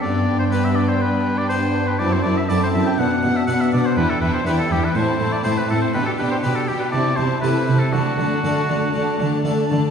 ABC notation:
X:1
M:4/4
L:1/16
Q:1/4=122
K:G
V:1 name="Violin section"
g16 | a2 a2 a2 a2 f2 f2 f2 f2 | g2 g2 g2 g2 a2 a2 a2 a2 | g2 g2 g2 g2 a2 a2 a2 a2 |
a2 a2 a2 a2 a2 a2 a2 a2 |]
V:2 name="Oboe"
d3 c B e d c B3 d c3 B | d c d e d c e g f3 e f e d c | B A B c B A G B c3 d c B A c | B A B c B A G B d2 c2 B3 A |
F12 z4 |]
V:3 name="Violin section"
D16 | E2 E2 E2 E2 D2 D2 D2 D2 | E2 E2 E2 E2 E2 E2 E2 E2 | G2 G2 G2 G2 E2 E2 E2 E2 |
D2 D2 D2 D2 D2 D2 D2 D2 |]
V:4 name="Viola section"
B,16 | C2 C2 C2 C2 B,2 B,2 B,2 B,2 | D2 D2 D2 D2 C2 C2 C2 C2 | D2 D2 D2 D2 C2 C2 C2 C2 |
A,2 A,2 A,2 A,2 A,2 A,2 A,2 A,2 |]
V:5 name="Harpsichord"
z4 [B,DG]4 z4 [B,DG]4 | z4 [CEA]4 z4 [B,DF]4 | z4 [B,DG]4 z4 [A,CE]4 | z4 [DG]4 z4 [A,CE]4 |
z4 [A,D]4 z4 [A,D]4 |]
V:6 name="Harpsichord" clef=bass
G,,16 | F,,2 F,,2 F,,2 F,,2 B,,2 B,,2 B,,2 B,,2 | E,,2 E,,2 E,,2 E,,2 A,,2 A,,2 A,,2 A,,2 | B,,2 B,,2 B,,2 B,,2 C,2 C,2 C,2 C,2 |
D,2 D,2 D,2 D,2 D,2 D,2 D,2 D,2 |]
V:7 name="Cello section" clef=bass
G,,16 | F,,2 F,,2 F,,2 F,,2 B,,2 B,,2 B,,2 B,,2 | E,,2 E,,2 E,,2 E,,2 A,,2 A,,2 A,,2 A,,2 | B,,2 B,,2 B,,2 B,,2 C,2 C,2 C,2 C,2 |
D,2 D,2 D,2 D,2 D,2 D,2 D,2 D,2 |]